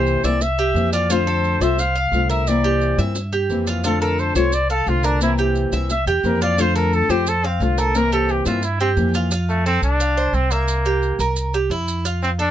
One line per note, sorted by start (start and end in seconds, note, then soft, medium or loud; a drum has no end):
0.00 0.18 C2 medium
0.00 0.23 C3 medium
0.00 0.23 E3 medium
0.00 0.24 A#3 medium
0.00 0.24 C4 medium
0.00 0.23 E4 medium
0.00 0.23 G4 medium
0.00 0.26 C5 medium
0.07 maracas soft
0.23 0.72 C2 medium
0.23 0.40 E3 medium
0.23 0.41 A#3 medium
0.23 0.41 C4 medium
0.23 0.40 E4 medium
0.23 0.43 D5 medium
0.23 0.58 E5 medium
0.23 maracas medium
0.41 0.92 E5 loud
0.41 muted nylon-string guitar stroke medium
0.41 maracas medium
0.59 0.92 G4 medium
0.59 maracas soft
0.74 1.55 F2 loud
0.74 1.09 E3 medium
0.74 1.09 A#3 medium
0.74 1.09 C4 medium
0.74 1.10 E4 medium
0.74 maracas soft
0.92 1.09 F4 medium
0.92 1.13 D5 medium
0.92 maracas medium
1.09 1.60 D3 medium
1.09 1.61 A3 medium
1.09 1.61 C4 medium
1.09 1.27 F4 medium
1.09 1.60 F4 medium
1.09 1.64 C5 medium
1.09 maracas medium
1.27 1.60 A4 medium
1.27 maracas soft
1.44 maracas soft
1.60 2.09 C2 medium
1.60 1.77 A3 medium
1.60 1.77 C4 medium
1.60 1.78 F4 medium
1.60 1.95 C5 medium
1.60 1.81 E5 medium
1.60 maracas medium
1.78 2.30 F5 loud
1.78 muted nylon-string guitar stroke medium
1.78 maracas medium
1.96 2.29 F5 medium
1.96 maracas soft
2.12 2.92 C2 medium
2.12 2.46 D3 medium
2.12 2.47 A3 medium
2.12 2.47 C4 medium
2.12 2.47 F4 medium
2.12 maracas soft
2.30 2.63 A#4 medium
2.30 2.50 E5 medium
2.30 maracas medium
2.47 2.98 C3 medium
2.47 2.98 E3 medium
2.47 2.98 A#3 medium
2.47 2.99 C4 medium
2.47 2.97 E4 medium
2.47 2.99 D5 medium
2.47 maracas medium
2.64 2.98 G4 medium
2.64 maracas soft
2.81 maracas soft
2.98 3.46 G2 medium
2.98 3.15 E3 medium
2.98 3.15 A#3 medium
2.98 3.15 C4 medium
2.98 3.15 E4 medium
2.98 3.32 E5 medium
2.98 maracas medium
3.15 muted nylon-string guitar stroke medium
3.15 maracas medium
3.33 3.66 G4 medium
3.33 maracas soft
3.49 4.30 F2 medium
3.49 3.83 E3 medium
3.49 3.84 A#3 medium
3.49 3.84 C4 medium
3.49 3.84 E4 medium
3.49 maracas soft
3.67 3.83 F4 medium
3.67 maracas medium
3.84 4.35 D3 medium
3.84 4.35 A3 medium
3.84 4.36 C4 medium
3.84 4.01 F4 medium
3.84 4.34 F4 medium
3.84 4.01 A4 medium
3.84 maracas medium
4.01 4.35 A4 medium
4.01 4.21 A#4 medium
4.01 maracas soft
4.18 4.35 C5 medium
4.18 maracas soft
4.35 4.83 C2 medium
4.35 4.52 A3 medium
4.35 4.52 C4 medium
4.35 4.52 F4 medium
4.35 4.69 C5 medium
4.35 4.55 C#5 medium
4.35 maracas medium
4.52 4.70 D5 loud
4.52 muted nylon-string guitar stroke medium
4.52 maracas medium
4.70 4.90 A4 medium
4.70 5.03 F5 medium
4.70 maracas soft
4.87 5.67 C2 medium
4.87 5.20 D3 medium
4.87 5.21 A3 medium
4.87 5.21 C4 medium
4.87 5.06 F4 medium
4.87 5.21 F4 medium
4.87 maracas soft
5.03 5.22 D4 loud
5.03 5.37 A#4 medium
5.03 maracas medium
5.21 5.72 C3 medium
5.21 5.72 E3 medium
5.21 5.72 A#3 medium
5.21 5.73 C4 medium
5.21 5.32 E4 medium
5.21 5.71 E4 medium
5.21 maracas medium
5.38 5.72 G4 medium
5.38 maracas soft
5.55 maracas soft
5.72 6.04 C2 medium
5.72 5.89 E3 medium
5.72 5.90 A#3 soft
5.72 5.89 C4 medium
5.72 5.89 E4 medium
5.72 6.06 E5 medium
5.72 maracas medium
5.90 6.06 E5 medium
5.90 muted nylon-string guitar stroke medium
5.90 maracas medium
6.06 6.22 E2 medium
6.06 6.40 G4 medium
6.06 6.24 G4 soft
6.06 maracas soft
6.24 7.04 F2 loud
6.24 6.57 E3 medium
6.24 6.58 A#3 medium
6.24 6.57 C4 medium
6.24 6.58 E4 medium
6.24 6.44 A#4 medium
6.24 maracas soft
6.41 6.58 F4 medium
6.41 6.62 D5 loud
6.41 maracas medium
6.58 7.08 D3 medium
6.58 7.09 A3 medium
6.58 7.10 C4 medium
6.58 6.75 F4 medium
6.58 7.08 F4 medium
6.58 6.76 C5 loud
6.58 maracas medium
6.76 7.09 A4 medium
6.76 6.96 A#4 medium
6.76 maracas soft
6.93 7.12 A4 loud
6.93 maracas soft
7.09 7.57 F2 medium
7.09 7.26 A3 medium
7.09 7.26 C4 medium
7.09 7.26 F4 medium
7.09 7.30 G4 medium
7.09 7.43 C5 medium
7.09 maracas medium
7.27 7.47 A4 loud
7.27 muted nylon-string guitar stroke medium
7.27 maracas medium
7.44 7.64 C4 medium
7.44 7.77 F5 medium
7.44 maracas soft
7.60 8.40 C2 medium
7.60 7.94 D3 medium
7.60 7.94 A3 medium
7.60 7.94 C4 medium
7.60 7.95 F4 medium
7.60 7.80 F4 medium
7.60 maracas soft
7.78 7.98 A4 medium
7.78 8.11 A#4 medium
7.78 maracas medium
7.94 8.45 C3 medium
7.94 8.45 E3 medium
7.94 8.45 A#3 medium
7.94 8.45 C4 medium
7.94 8.44 E4 medium
7.94 8.12 A#4 loud
7.94 maracas medium
8.12 8.45 G4 medium
8.12 8.32 A4 loud
8.12 maracas soft
8.29 8.46 G4 medium
8.29 maracas soft
8.45 8.94 G2 medium
8.45 8.61 E3 medium
8.45 8.62 A#3 medium
8.45 8.62 C4 medium
8.45 8.62 E4 medium
8.45 8.66 F4 medium
8.45 8.79 E5 medium
8.45 maracas medium
8.62 8.80 E4 medium
8.62 muted nylon-string guitar stroke medium
8.62 maracas medium
8.80 8.91 C4 medium
8.80 9.14 G4 medium
8.80 maracas soft
8.96 9.77 F2 loud
8.96 9.30 E3 soft
8.96 9.31 A#3 medium
8.96 9.31 C4 medium
8.96 9.31 E4 medium
8.96 maracas soft
9.14 9.31 F4 medium
9.14 maracas medium
9.31 9.65 F4 medium
9.31 maracas medium
9.49 9.65 A3 medium
9.49 maracas soft
9.66 9.82 C4 loud
9.66 9.99 A4 medium
9.66 maracas soft
9.82 10.30 C2 medium
9.82 10.36 D4 loud
9.82 maracas medium
10.00 10.17 F5 medium
10.00 maracas medium
10.17 10.50 C5 medium
10.17 maracas soft
10.33 11.13 C2 medium
10.33 10.53 C4 medium
10.33 maracas soft
10.51 11.19 A#3 medium
10.51 10.84 E5 medium
10.51 maracas medium
10.68 maracas medium
10.85 11.19 G4 medium
10.85 maracas soft
11.02 maracas soft
11.19 11.67 C2 medium
11.19 11.53 A#4 medium
11.19 maracas medium
11.36 maracas medium
11.54 11.70 G4 medium
11.54 maracas soft
11.70 12.50 F2 medium
11.70 12.04 E4 medium
11.70 maracas soft
11.88 maracas medium
12.05 12.38 F4 medium
12.05 maracas medium
12.22 12.30 C4 medium
12.22 maracas soft
12.39 12.51 D4 loud
12.39 12.51 A4 medium
12.39 maracas soft